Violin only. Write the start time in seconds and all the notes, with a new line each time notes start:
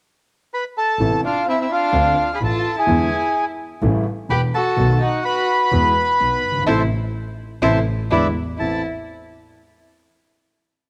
1.24 D4
1.48 C4
1.60 C4
1.72 D4
2.34 G#4
2.45 F4
2.79 E4
4.31 G4
4.54 F#4
5.02 D#4
5.26 F#4
6.67 E4
7.62 E4
8.11 E4
8.58 E4